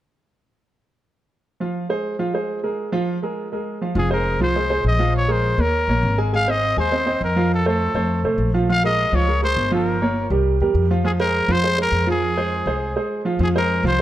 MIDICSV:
0, 0, Header, 1, 4, 480
1, 0, Start_track
1, 0, Key_signature, -4, "minor"
1, 0, Tempo, 295130
1, 2596, Time_signature, 4, 2, 24, 8
1, 22796, End_track
2, 0, Start_track
2, 0, Title_t, "Trumpet"
2, 0, Program_c, 0, 56
2, 6476, Note_on_c, 0, 68, 78
2, 6684, Note_off_c, 0, 68, 0
2, 6713, Note_on_c, 0, 70, 74
2, 7147, Note_off_c, 0, 70, 0
2, 7200, Note_on_c, 0, 72, 81
2, 7854, Note_off_c, 0, 72, 0
2, 7926, Note_on_c, 0, 75, 79
2, 8354, Note_off_c, 0, 75, 0
2, 8403, Note_on_c, 0, 73, 84
2, 8646, Note_on_c, 0, 72, 76
2, 8671, Note_off_c, 0, 73, 0
2, 9122, Note_on_c, 0, 70, 89
2, 9147, Note_off_c, 0, 72, 0
2, 10066, Note_off_c, 0, 70, 0
2, 10334, Note_on_c, 0, 77, 94
2, 10578, Note_on_c, 0, 75, 91
2, 10602, Note_off_c, 0, 77, 0
2, 11033, Note_off_c, 0, 75, 0
2, 11056, Note_on_c, 0, 72, 84
2, 11704, Note_off_c, 0, 72, 0
2, 11774, Note_on_c, 0, 70, 79
2, 12199, Note_off_c, 0, 70, 0
2, 12262, Note_on_c, 0, 69, 80
2, 12461, Note_off_c, 0, 69, 0
2, 12495, Note_on_c, 0, 69, 73
2, 13406, Note_off_c, 0, 69, 0
2, 14171, Note_on_c, 0, 77, 92
2, 14374, Note_off_c, 0, 77, 0
2, 14404, Note_on_c, 0, 75, 85
2, 14888, Note_on_c, 0, 73, 83
2, 14912, Note_off_c, 0, 75, 0
2, 15347, Note_off_c, 0, 73, 0
2, 15354, Note_on_c, 0, 72, 89
2, 15787, Note_off_c, 0, 72, 0
2, 15843, Note_on_c, 0, 70, 64
2, 16718, Note_off_c, 0, 70, 0
2, 17981, Note_on_c, 0, 68, 83
2, 18085, Note_off_c, 0, 68, 0
2, 18215, Note_on_c, 0, 70, 87
2, 18736, Note_on_c, 0, 72, 104
2, 18761, Note_off_c, 0, 70, 0
2, 19187, Note_off_c, 0, 72, 0
2, 19221, Note_on_c, 0, 70, 95
2, 19638, Note_off_c, 0, 70, 0
2, 19691, Note_on_c, 0, 68, 80
2, 21274, Note_off_c, 0, 68, 0
2, 21848, Note_on_c, 0, 68, 80
2, 21943, Note_off_c, 0, 68, 0
2, 22083, Note_on_c, 0, 70, 75
2, 22503, Note_off_c, 0, 70, 0
2, 22566, Note_on_c, 0, 72, 84
2, 22796, Note_off_c, 0, 72, 0
2, 22796, End_track
3, 0, Start_track
3, 0, Title_t, "Grand piano"
3, 0, Program_c, 1, 0
3, 2607, Note_on_c, 1, 53, 59
3, 2612, Note_on_c, 1, 65, 65
3, 2621, Note_on_c, 1, 77, 62
3, 2997, Note_off_c, 1, 53, 0
3, 3000, Note_off_c, 1, 65, 0
3, 3005, Note_off_c, 1, 77, 0
3, 3079, Note_on_c, 1, 56, 61
3, 3084, Note_on_c, 1, 68, 65
3, 3090, Note_on_c, 1, 72, 64
3, 3472, Note_off_c, 1, 56, 0
3, 3476, Note_off_c, 1, 68, 0
3, 3479, Note_off_c, 1, 72, 0
3, 3560, Note_on_c, 1, 53, 58
3, 3566, Note_on_c, 1, 65, 70
3, 3570, Note_on_c, 1, 77, 69
3, 3756, Note_off_c, 1, 53, 0
3, 3760, Note_off_c, 1, 65, 0
3, 3762, Note_off_c, 1, 77, 0
3, 3800, Note_on_c, 1, 56, 63
3, 3806, Note_on_c, 1, 68, 65
3, 3815, Note_on_c, 1, 72, 56
3, 4194, Note_off_c, 1, 56, 0
3, 4197, Note_off_c, 1, 68, 0
3, 4202, Note_off_c, 1, 72, 0
3, 4279, Note_on_c, 1, 56, 58
3, 4289, Note_on_c, 1, 68, 59
3, 4290, Note_on_c, 1, 70, 61
3, 4673, Note_off_c, 1, 56, 0
3, 4679, Note_off_c, 1, 68, 0
3, 4680, Note_off_c, 1, 70, 0
3, 4753, Note_on_c, 1, 53, 79
3, 4757, Note_on_c, 1, 65, 84
3, 4762, Note_on_c, 1, 77, 77
3, 5150, Note_off_c, 1, 53, 0
3, 5153, Note_off_c, 1, 65, 0
3, 5156, Note_off_c, 1, 77, 0
3, 5244, Note_on_c, 1, 56, 59
3, 5253, Note_on_c, 1, 68, 59
3, 5256, Note_on_c, 1, 70, 64
3, 5637, Note_off_c, 1, 56, 0
3, 5642, Note_off_c, 1, 68, 0
3, 5644, Note_off_c, 1, 70, 0
3, 5726, Note_on_c, 1, 56, 64
3, 5738, Note_on_c, 1, 68, 55
3, 5740, Note_on_c, 1, 70, 58
3, 6119, Note_off_c, 1, 56, 0
3, 6126, Note_off_c, 1, 68, 0
3, 6127, Note_off_c, 1, 70, 0
3, 6204, Note_on_c, 1, 53, 65
3, 6209, Note_on_c, 1, 65, 59
3, 6219, Note_on_c, 1, 77, 62
3, 6401, Note_off_c, 1, 53, 0
3, 6404, Note_off_c, 1, 65, 0
3, 6409, Note_off_c, 1, 77, 0
3, 6437, Note_on_c, 1, 53, 63
3, 6438, Note_on_c, 1, 65, 72
3, 6447, Note_on_c, 1, 77, 68
3, 6637, Note_off_c, 1, 53, 0
3, 6638, Note_off_c, 1, 65, 0
3, 6643, Note_off_c, 1, 77, 0
3, 6672, Note_on_c, 1, 56, 68
3, 6679, Note_on_c, 1, 68, 71
3, 6680, Note_on_c, 1, 72, 72
3, 7071, Note_off_c, 1, 56, 0
3, 7075, Note_off_c, 1, 68, 0
3, 7075, Note_off_c, 1, 72, 0
3, 7167, Note_on_c, 1, 53, 69
3, 7169, Note_on_c, 1, 65, 71
3, 7181, Note_on_c, 1, 77, 66
3, 7363, Note_off_c, 1, 53, 0
3, 7364, Note_off_c, 1, 65, 0
3, 7371, Note_off_c, 1, 77, 0
3, 7410, Note_on_c, 1, 56, 65
3, 7413, Note_on_c, 1, 68, 55
3, 7420, Note_on_c, 1, 72, 58
3, 7605, Note_off_c, 1, 56, 0
3, 7607, Note_off_c, 1, 68, 0
3, 7611, Note_off_c, 1, 72, 0
3, 7647, Note_on_c, 1, 56, 59
3, 7649, Note_on_c, 1, 72, 61
3, 7650, Note_on_c, 1, 68, 68
3, 8041, Note_off_c, 1, 56, 0
3, 8042, Note_off_c, 1, 72, 0
3, 8043, Note_off_c, 1, 68, 0
3, 8121, Note_on_c, 1, 53, 77
3, 8122, Note_on_c, 1, 65, 70
3, 8125, Note_on_c, 1, 77, 76
3, 8517, Note_off_c, 1, 53, 0
3, 8517, Note_off_c, 1, 65, 0
3, 8520, Note_off_c, 1, 77, 0
3, 8589, Note_on_c, 1, 56, 72
3, 8595, Note_on_c, 1, 68, 73
3, 8602, Note_on_c, 1, 70, 74
3, 8990, Note_off_c, 1, 56, 0
3, 8994, Note_off_c, 1, 68, 0
3, 8998, Note_off_c, 1, 70, 0
3, 9076, Note_on_c, 1, 58, 63
3, 9079, Note_on_c, 1, 70, 59
3, 9089, Note_on_c, 1, 73, 60
3, 9475, Note_off_c, 1, 58, 0
3, 9476, Note_off_c, 1, 70, 0
3, 9482, Note_off_c, 1, 73, 0
3, 9581, Note_on_c, 1, 58, 64
3, 9581, Note_on_c, 1, 73, 59
3, 9582, Note_on_c, 1, 70, 67
3, 9970, Note_off_c, 1, 58, 0
3, 9970, Note_off_c, 1, 70, 0
3, 9970, Note_off_c, 1, 73, 0
3, 10048, Note_on_c, 1, 56, 71
3, 10053, Note_on_c, 1, 68, 75
3, 10057, Note_on_c, 1, 80, 66
3, 10245, Note_off_c, 1, 56, 0
3, 10248, Note_off_c, 1, 68, 0
3, 10250, Note_off_c, 1, 80, 0
3, 10295, Note_on_c, 1, 68, 62
3, 10296, Note_on_c, 1, 56, 68
3, 10304, Note_on_c, 1, 80, 73
3, 10489, Note_off_c, 1, 68, 0
3, 10490, Note_off_c, 1, 56, 0
3, 10494, Note_off_c, 1, 80, 0
3, 10528, Note_on_c, 1, 60, 75
3, 10539, Note_on_c, 1, 72, 73
3, 10543, Note_on_c, 1, 75, 70
3, 10922, Note_off_c, 1, 60, 0
3, 10928, Note_off_c, 1, 72, 0
3, 10931, Note_off_c, 1, 75, 0
3, 11013, Note_on_c, 1, 56, 71
3, 11021, Note_on_c, 1, 68, 75
3, 11025, Note_on_c, 1, 80, 75
3, 11208, Note_off_c, 1, 56, 0
3, 11213, Note_off_c, 1, 68, 0
3, 11215, Note_off_c, 1, 80, 0
3, 11250, Note_on_c, 1, 60, 63
3, 11256, Note_on_c, 1, 72, 63
3, 11257, Note_on_c, 1, 75, 60
3, 11446, Note_off_c, 1, 60, 0
3, 11450, Note_off_c, 1, 72, 0
3, 11451, Note_off_c, 1, 75, 0
3, 11483, Note_on_c, 1, 60, 64
3, 11491, Note_on_c, 1, 72, 63
3, 11501, Note_on_c, 1, 75, 68
3, 11879, Note_off_c, 1, 60, 0
3, 11884, Note_off_c, 1, 72, 0
3, 11890, Note_off_c, 1, 75, 0
3, 11972, Note_on_c, 1, 53, 69
3, 11975, Note_on_c, 1, 65, 70
3, 11981, Note_on_c, 1, 77, 73
3, 12364, Note_off_c, 1, 53, 0
3, 12366, Note_off_c, 1, 65, 0
3, 12370, Note_off_c, 1, 77, 0
3, 12455, Note_on_c, 1, 57, 72
3, 12461, Note_on_c, 1, 69, 74
3, 12462, Note_on_c, 1, 72, 67
3, 12846, Note_off_c, 1, 57, 0
3, 12850, Note_off_c, 1, 69, 0
3, 12850, Note_off_c, 1, 72, 0
3, 12925, Note_on_c, 1, 57, 62
3, 12929, Note_on_c, 1, 69, 67
3, 12934, Note_on_c, 1, 72, 62
3, 13320, Note_off_c, 1, 57, 0
3, 13322, Note_off_c, 1, 69, 0
3, 13326, Note_off_c, 1, 72, 0
3, 13404, Note_on_c, 1, 57, 64
3, 13414, Note_on_c, 1, 69, 60
3, 13417, Note_on_c, 1, 72, 59
3, 13799, Note_off_c, 1, 57, 0
3, 13805, Note_off_c, 1, 69, 0
3, 13807, Note_off_c, 1, 72, 0
3, 13889, Note_on_c, 1, 53, 68
3, 13896, Note_on_c, 1, 65, 68
3, 13898, Note_on_c, 1, 77, 73
3, 14085, Note_off_c, 1, 53, 0
3, 14090, Note_off_c, 1, 65, 0
3, 14090, Note_off_c, 1, 77, 0
3, 14137, Note_on_c, 1, 53, 61
3, 14141, Note_on_c, 1, 77, 71
3, 14142, Note_on_c, 1, 65, 72
3, 14330, Note_off_c, 1, 53, 0
3, 14332, Note_off_c, 1, 77, 0
3, 14333, Note_off_c, 1, 65, 0
3, 14369, Note_on_c, 1, 56, 76
3, 14373, Note_on_c, 1, 68, 67
3, 14378, Note_on_c, 1, 70, 77
3, 14762, Note_off_c, 1, 56, 0
3, 14764, Note_off_c, 1, 68, 0
3, 14767, Note_off_c, 1, 70, 0
3, 14846, Note_on_c, 1, 53, 69
3, 14850, Note_on_c, 1, 65, 72
3, 14852, Note_on_c, 1, 77, 68
3, 15043, Note_off_c, 1, 53, 0
3, 15046, Note_off_c, 1, 65, 0
3, 15047, Note_off_c, 1, 77, 0
3, 15083, Note_on_c, 1, 56, 60
3, 15083, Note_on_c, 1, 68, 55
3, 15087, Note_on_c, 1, 70, 59
3, 15282, Note_off_c, 1, 56, 0
3, 15282, Note_off_c, 1, 68, 0
3, 15284, Note_off_c, 1, 70, 0
3, 15327, Note_on_c, 1, 56, 64
3, 15327, Note_on_c, 1, 68, 68
3, 15334, Note_on_c, 1, 70, 67
3, 15720, Note_off_c, 1, 56, 0
3, 15720, Note_off_c, 1, 68, 0
3, 15724, Note_off_c, 1, 70, 0
3, 15798, Note_on_c, 1, 53, 78
3, 15806, Note_on_c, 1, 65, 77
3, 15809, Note_on_c, 1, 77, 71
3, 16194, Note_off_c, 1, 53, 0
3, 16199, Note_off_c, 1, 65, 0
3, 16201, Note_off_c, 1, 77, 0
3, 16293, Note_on_c, 1, 58, 72
3, 16294, Note_on_c, 1, 70, 78
3, 16296, Note_on_c, 1, 73, 73
3, 16683, Note_off_c, 1, 58, 0
3, 16683, Note_off_c, 1, 70, 0
3, 16685, Note_off_c, 1, 73, 0
3, 16767, Note_on_c, 1, 55, 69
3, 16773, Note_on_c, 1, 67, 64
3, 16782, Note_on_c, 1, 70, 58
3, 17159, Note_off_c, 1, 55, 0
3, 17162, Note_off_c, 1, 67, 0
3, 17168, Note_off_c, 1, 70, 0
3, 17264, Note_on_c, 1, 55, 64
3, 17266, Note_on_c, 1, 67, 62
3, 17269, Note_on_c, 1, 70, 67
3, 17649, Note_off_c, 1, 55, 0
3, 17649, Note_off_c, 1, 67, 0
3, 17652, Note_off_c, 1, 70, 0
3, 17735, Note_on_c, 1, 53, 68
3, 17740, Note_on_c, 1, 65, 72
3, 17743, Note_on_c, 1, 77, 68
3, 17926, Note_off_c, 1, 53, 0
3, 17929, Note_off_c, 1, 65, 0
3, 17931, Note_off_c, 1, 77, 0
3, 17962, Note_on_c, 1, 53, 74
3, 17963, Note_on_c, 1, 65, 69
3, 17967, Note_on_c, 1, 77, 71
3, 18159, Note_off_c, 1, 53, 0
3, 18159, Note_off_c, 1, 65, 0
3, 18162, Note_off_c, 1, 77, 0
3, 18210, Note_on_c, 1, 68, 72
3, 18212, Note_on_c, 1, 56, 72
3, 18216, Note_on_c, 1, 72, 75
3, 18599, Note_off_c, 1, 68, 0
3, 18601, Note_off_c, 1, 56, 0
3, 18602, Note_off_c, 1, 72, 0
3, 18677, Note_on_c, 1, 53, 76
3, 18686, Note_on_c, 1, 65, 80
3, 18688, Note_on_c, 1, 77, 74
3, 18875, Note_off_c, 1, 53, 0
3, 18880, Note_off_c, 1, 65, 0
3, 18881, Note_off_c, 1, 77, 0
3, 18918, Note_on_c, 1, 56, 64
3, 18925, Note_on_c, 1, 68, 61
3, 18934, Note_on_c, 1, 72, 69
3, 19115, Note_off_c, 1, 56, 0
3, 19119, Note_off_c, 1, 68, 0
3, 19124, Note_off_c, 1, 72, 0
3, 19159, Note_on_c, 1, 68, 67
3, 19161, Note_on_c, 1, 56, 66
3, 19170, Note_on_c, 1, 72, 71
3, 19551, Note_off_c, 1, 68, 0
3, 19553, Note_off_c, 1, 56, 0
3, 19558, Note_off_c, 1, 72, 0
3, 19629, Note_on_c, 1, 65, 75
3, 19631, Note_on_c, 1, 53, 71
3, 19638, Note_on_c, 1, 77, 70
3, 20025, Note_off_c, 1, 65, 0
3, 20026, Note_off_c, 1, 53, 0
3, 20030, Note_off_c, 1, 77, 0
3, 20115, Note_on_c, 1, 56, 72
3, 20118, Note_on_c, 1, 68, 69
3, 20127, Note_on_c, 1, 72, 68
3, 20508, Note_off_c, 1, 56, 0
3, 20510, Note_off_c, 1, 68, 0
3, 20515, Note_off_c, 1, 72, 0
3, 20593, Note_on_c, 1, 56, 65
3, 20603, Note_on_c, 1, 68, 64
3, 20610, Note_on_c, 1, 72, 66
3, 20986, Note_off_c, 1, 56, 0
3, 20992, Note_off_c, 1, 68, 0
3, 20996, Note_off_c, 1, 72, 0
3, 21078, Note_on_c, 1, 56, 69
3, 21080, Note_on_c, 1, 68, 68
3, 21088, Note_on_c, 1, 72, 58
3, 21469, Note_off_c, 1, 56, 0
3, 21470, Note_off_c, 1, 68, 0
3, 21475, Note_off_c, 1, 72, 0
3, 21548, Note_on_c, 1, 53, 69
3, 21556, Note_on_c, 1, 65, 68
3, 21562, Note_on_c, 1, 77, 70
3, 21746, Note_off_c, 1, 53, 0
3, 21751, Note_off_c, 1, 65, 0
3, 21754, Note_off_c, 1, 77, 0
3, 21798, Note_on_c, 1, 53, 77
3, 21806, Note_on_c, 1, 65, 66
3, 21806, Note_on_c, 1, 77, 70
3, 21992, Note_off_c, 1, 53, 0
3, 21996, Note_off_c, 1, 65, 0
3, 21996, Note_off_c, 1, 77, 0
3, 22037, Note_on_c, 1, 56, 73
3, 22041, Note_on_c, 1, 68, 68
3, 22050, Note_on_c, 1, 72, 76
3, 22427, Note_off_c, 1, 56, 0
3, 22429, Note_off_c, 1, 68, 0
3, 22434, Note_off_c, 1, 72, 0
3, 22517, Note_on_c, 1, 53, 74
3, 22521, Note_on_c, 1, 65, 72
3, 22524, Note_on_c, 1, 77, 80
3, 22710, Note_off_c, 1, 53, 0
3, 22713, Note_off_c, 1, 65, 0
3, 22714, Note_off_c, 1, 77, 0
3, 22796, End_track
4, 0, Start_track
4, 0, Title_t, "Upright bass"
4, 0, Program_c, 2, 32
4, 6428, Note_on_c, 2, 29, 91
4, 7106, Note_off_c, 2, 29, 0
4, 7147, Note_on_c, 2, 36, 73
4, 7826, Note_off_c, 2, 36, 0
4, 7874, Note_on_c, 2, 34, 77
4, 8992, Note_off_c, 2, 34, 0
4, 9075, Note_on_c, 2, 39, 83
4, 9527, Note_off_c, 2, 39, 0
4, 9560, Note_on_c, 2, 34, 64
4, 9787, Note_off_c, 2, 34, 0
4, 9806, Note_on_c, 2, 32, 84
4, 10919, Note_off_c, 2, 32, 0
4, 11008, Note_on_c, 2, 39, 75
4, 11678, Note_off_c, 2, 39, 0
4, 11722, Note_on_c, 2, 41, 79
4, 12837, Note_off_c, 2, 41, 0
4, 12919, Note_on_c, 2, 41, 71
4, 13370, Note_off_c, 2, 41, 0
4, 13400, Note_on_c, 2, 36, 58
4, 13617, Note_off_c, 2, 36, 0
4, 13627, Note_on_c, 2, 34, 73
4, 14748, Note_off_c, 2, 34, 0
4, 14834, Note_on_c, 2, 37, 75
4, 15509, Note_off_c, 2, 37, 0
4, 15554, Note_on_c, 2, 31, 79
4, 16669, Note_off_c, 2, 31, 0
4, 16757, Note_on_c, 2, 36, 76
4, 17206, Note_off_c, 2, 36, 0
4, 17245, Note_on_c, 2, 40, 68
4, 17467, Note_off_c, 2, 40, 0
4, 17477, Note_on_c, 2, 41, 79
4, 18588, Note_off_c, 2, 41, 0
4, 18675, Note_on_c, 2, 41, 88
4, 19345, Note_off_c, 2, 41, 0
4, 19383, Note_on_c, 2, 41, 80
4, 20499, Note_off_c, 2, 41, 0
4, 20588, Note_on_c, 2, 36, 77
4, 21036, Note_off_c, 2, 36, 0
4, 21781, Note_on_c, 2, 41, 85
4, 22453, Note_off_c, 2, 41, 0
4, 22500, Note_on_c, 2, 36, 88
4, 22796, Note_off_c, 2, 36, 0
4, 22796, End_track
0, 0, End_of_file